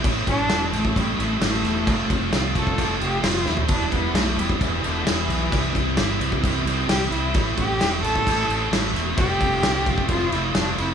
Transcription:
<<
  \new Staff \with { instrumentName = "Cello" } { \time 4/4 \key a \minor \tempo 4 = 132 r8 d'4 a8 g8 a8 a4~ | a4 r8 a'4 g'8 f'8 e'8 | d'8 b8 a8 g8 e8 d8 e4~ | e4 r2 g'8 e'8~ |
e'8 g'4 a'2 r8 | g'2 f'8 e'8 d'8 e'8 | }
  \new Staff \with { instrumentName = "Distorted electric guitar" } { \time 4/4 \key a \minor <a, e a c' e'>8 <a c' e'>8 <e a c' e'>8 <a c' e'>8 <a, e a c' e'>8 <a c' e'>8 <e a c' e'>4 | <f a c' f'>8 <a c' f'>8 <f a c' f'>8 <a c' f'>8 <f a c' f'>8 <a c' f'>8 <f a c' f'>4 | <e g b e'>8 <g b e'>8 <e g b e'>8 <g b e'>8 <e g b e'>8 <g b e'>8 <e g b e'>4 | <c e g c' e'>8 <g c' e'>8 <e g c' e'>8 <g c' e'>8 <c e g c' e'>8 <g c' e'>8 <e g c' e'>4 |
<a, e a c' e'>8 <a c' e'>8 <e a c' e'>8 <a c' e'>8 <a, e a c' e'>8 <a c' e'>8 <e a c' e'>4 | <f a c' f'>8 <a c' f'>8 <f a c' f'>8 <a c' f'>8 <f a c' f'>8 <a c' f'>8 <f a c' f'>4 | }
  \new Staff \with { instrumentName = "Distorted electric guitar" } { \time 4/4 \key a \minor <a, e a c' e'>4 <a, e a c' e'>8 <a c' e'>4 <a c' e'>8 <e a c' e'>4 | <f a c' f'>4 <f a c' f'>8 <a c' f'>4 <a c' f'>8 <f a c' f'>4 | <e g b e'>4 <e g b e'>8 <g b e'>4 <g b e'>8 <e g b e'>4 | <c e g c' e'>4 <c e g c' e'>8 <g c' e'>4 <g c' e'>8 <e g c' e'>4 |
<a, e a c' e'>4 <a, e a c' e'>8 <a c' e'>4 <a c' e'>8 <e a c' e'>4 | <f a c' f'>4 <f a c' f'>8 <a c' f'>4 <a c' f'>8 <f a c' f'>4 | }
  \new Staff \with { instrumentName = "Fingered electric bass" } { \clef bass \time 4/4 \key a \minor a,,8 a,,8 e,,8 a,,8 a,,8 a,,8 a,,8 e,,8 | f,,8 f,,8 c,8 f,,8 f,,8 f,,8 f,,8 dis,8 | e,,8 e,,8 b,,8 e,,8 e,,8 e,,8 e,,8 b,,8 | c,8 c,8 g,,8 c,8 c,8 c,8 c,8 c,8 |
a,,8 a,,8 e,,8 a,,8 a,,8 a,,8 a,,8 e,,8 | f,,8 f,,8 c,8 f,,8 f,,8 f,,8 f,,8 f,,8 | }
  \new DrumStaff \with { instrumentName = "Drums" } \drummode { \time 4/4 <cymc bd>8 <cymc bd>8 <cymc sn>8 cymc16 bd16 <cymc bd>8 cymc8 <cymc sn>16 sn16 <cymc sn>8 | <cymc bd>8 <cymc bd>8 <cymc sn>8 <cymc bd>16 bd16 <cymc bd>8 cymc8 <cymc sn>8 sn16 tomfh16 | <cymc bd>8 <cymc bd>8 <cymc sn>8 cymc16 bd16 <cymc bd>8 cymc8 <cymc sn>8 cymc8 | <cymc bd>8 <cymc bd>8 <cymc sn>8 cymc16 bd16 <cymc bd>8 cymc8 <cymc sn>16 sn16 cymc8 |
<cymc bd>8 <cymc bd>8 <cymc sn>8 cymc16 bd16 <cymc bd>8 cymc8 <cymc sn>8 <cymc sn>8 | <cymc bd>8 <cymc bd>8 <cymc sn>8 <cymc bd>16 bd16 <cymc bd>8 cymc8 <cymc sn>8 cymc8 | }
>>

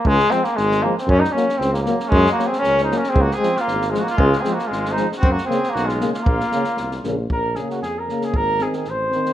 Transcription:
<<
  \new Staff \with { instrumentName = "Trumpet" } { \time 2/4 \key bes \minor \tempo 4 = 116 r2 | r2 | des'8 ges'16 aes'16 bes'8 c''16 bes'16 | aes'16 ges'16 aes'8 f'8 f'16 ges'16 |
f'8 aes'16 ges'16 f'8 c''16 r16 | ges'16 ges'16 aes'8 ges'16 f'8 f'16 | f'4. r8 | r2 |
r2 | }
  \new Staff \with { instrumentName = "Flugelhorn" } { \time 2/4 \key bes \minor aes8 c'16 bes16 aes8 bes16 c'16 | des'16 ees'16 des'8 c'16 bes16 bes8 | aes8 bes16 c'16 des'8 ees'16 des'16 | c'16 bes16 c'8 bes8 aes16 bes16 |
aes8 c'16 bes16 aes8 ees'16 r16 | c'16 bes16 c'8 bes16 aes8 aes16 | bes4. r8 | bes'8 aes'16 ges'16 aes'16 bes'8 aes'16 |
bes'8 aes'16 aes'16 c''4 | }
  \new Staff \with { instrumentName = "Euphonium" } { \time 2/4 \key bes \minor r8 aes8 r8 aes8 | r8 bes8 r8 bes8 | r8 bes8 r8 bes8 | r8 aes8 r8 aes8 |
r8 aes8 r8 aes8 | r8 bes8 r8 bes8 | r8 bes8 r8 bes8 | r8 bes8 r8 bes8 |
r8 c'8 r8 c'8 | }
  \new Staff \with { instrumentName = "Euphonium" } { \clef bass \time 2/4 \key bes \minor r8 f8 r8 f8 | r8 ges8 r8 ges8 | r8 ges8 r8 ges8 | r8 f8 r8 f8 |
r8 f8 r8 f8 | r8 des8 r8 des8 | r8 des8 r8 des8 | r8 des8 r8 des8 |
r8 ees8 r8 ees8 | }
  \new Staff \with { instrumentName = "Tuba" } { \clef bass \time 2/4 \key bes \minor des,8 r8 aes,,4 | ges,8 r8 des,4 | ges,8 r8 des,4 | des,8 r8 aes,,4 |
des,8 r8 aes,,4 | ges,8 r8 ces,4 | bes,,8 r8 c,8 bes,,8 | bes,,4 f,4 |
aes,,4 a,,4 | }
  \new DrumStaff \with { instrumentName = "Drums" } \drummode { \time 2/4 bd16 sn16 sn16 sn16 sn16 sn8 sn16 | bd16 sn16 sn16 sn16 sn16 sn16 sn16 sn16 | bd16 sn16 sn16 sn16 sn16 sn16 sn16 sn16 | bd16 sn16 sn16 sn16 sn16 sn16 sn16 sn16 |
bd16 sn16 sn16 sn16 sn16 sn16 sn16 sn16 | bd16 sn16 sn16 sn16 sn16 sn16 sn16 sn16 | bd16 sn16 sn16 sn16 sn16 sn16 sn8 | bd8 sn16 sn16 sn8 sn16 sn16 |
bd8 sn16 sn16 sn8 sn16 sn16 | }
>>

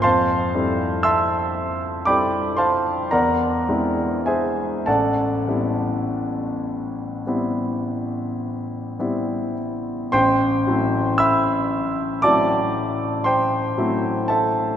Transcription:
\new Staff \with { instrumentName = "Grand piano" } { \time 9/8 \key a \dorian \tempo 4. = 38 << { <c'' f'' a'' c'''>4 <e'' a'' c''' e'''>4 <d'' g'' b'' d'''>8 <c'' f'' a'' c'''>8 <bes' d'' fis'' bes''>4 <gis' bis' e'' gis''>8 | <a' d'' fis'' a''>1 r8 | <c'' g'' c'''>4 <e'' b'' e'''>4 <d'' a'' d'''>4 <c'' g'' c'''>4 <a' e'' a''>8 | } \\ { f,8 <g c' e' a'>4. <g c' e' a'>4 e,8 <gis bis d' e'>4 | a,,8 <g b c' e'>4. <g b c' e'>4. <g b c' e'>4 | a,,8 <fis a c' e'>4. <fis a c' e'>4. <fis a c' e'>4 | } >> }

